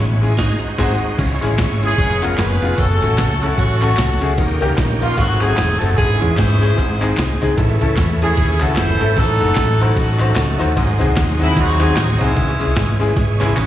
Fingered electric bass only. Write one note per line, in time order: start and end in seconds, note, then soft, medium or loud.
0.00 0.33 A1 medium
0.39 0.55 G#1 medium
0.79 0.95 G#1 medium
1.19 1.39 C#2 loud
1.43 1.56 A1 medium
1.59 1.93 G#1 medium
1.98 2.32 F1 medium
2.38 2.58 F#1 medium
2.62 2.76 F1 loud
2.78 2.98 F#1 medium
3.02 3.18 A1 medium
3.18 3.52 C#2 medium
3.58 3.92 A1 medium
3.98 4.18 C2 medium
4.22 4.36 C#2 medium
4.38 4.59 D#2 medium
4.62 4.76 C#2 medium
4.78 5.12 A#1 medium
5.18 5.52 G#1 loud
5.58 5.78 E1 medium
5.81 5.95 F#1 medium
5.98 6.18 G#1 medium
6.22 6.35 E2 loud
6.38 6.72 G#2 medium
6.78 7.12 G#1 medium
7.18 7.38 C2 medium
7.41 7.55 C#2 medium
7.58 7.78 A1 medium
7.82 7.95 C#2 loud
7.98 8.32 E2 medium
8.37 8.57 D#2 medium
8.61 8.75 C#2 medium
8.78 8.98 F#1 medium
9.01 9.15 G#1 medium
9.17 9.37 A1 loud
9.41 9.55 F#1 medium
9.57 9.91 A1 medium
9.96 10.31 A1 medium
10.36 10.57 C#2 medium
10.61 10.75 D#2 medium
10.77 10.97 G#1 medium
11.01 11.15 C2 medium
11.17 11.51 D#2 loud
11.57 11.91 D#2 medium
11.97 12.17 A1 loud
12.21 12.35 C2 medium
12.37 12.57 C#2 loud
12.61 12.75 C2 medium
12.77 13.11 G#1 medium
13.16 13.51 G#1 medium
13.58 13.66 A1 loud